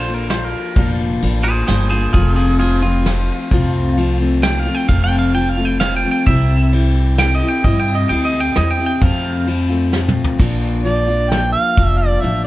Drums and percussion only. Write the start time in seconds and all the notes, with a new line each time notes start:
0.30 snare, ride
0.76 kick, ride
1.22 ride
1.68 snare, ride
2.14 kick, ride
2.37 ride
2.60 ride
3.06 snare, ride
3.51 kick, ride
3.97 ride
4.43 snare, ride
4.89 kick, ride
5.12 ride
5.35 ride
5.81 snare, ride
6.26 kick, ride
6.73 ride
7.18 snare, ride
7.64 kick, ride
7.88 ride
8.10 ride
8.56 snare, ride
9.02 kick, ride
9.47 ride
9.93 snare
10.08 mid tom
10.24 floor tom
10.40 kick, crash
10.85 closed hi-hat
11.32 snare, closed hi-hat
11.77 kick, closed hi-hat
12.24 closed hi-hat